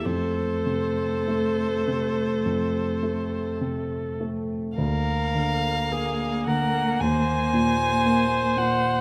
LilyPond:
<<
  \new Staff \with { instrumentName = "Violin" } { \time 4/4 \key f \phrygian \tempo 4 = 53 c''2. r4 | f''4. ges''8 aes''4. ges''8 | }
  \new Staff \with { instrumentName = "Viola" } { \time 4/4 \key f \phrygian a'2.~ a'8 r8 | bes'4 aes'8 bes'8 c''2 | }
  \new Staff \with { instrumentName = "Cello" } { \time 4/4 \key f \phrygian a1 | bes1 | }
  \new Staff \with { instrumentName = "Grand piano" } { \clef bass \time 4/4 \key f \phrygian f,8 c8 a8 c8 f,8 a8 c8 a8 | d,8 d8 bes8 d8 ees,8 bes,8 bes8 bes,8 | }
>>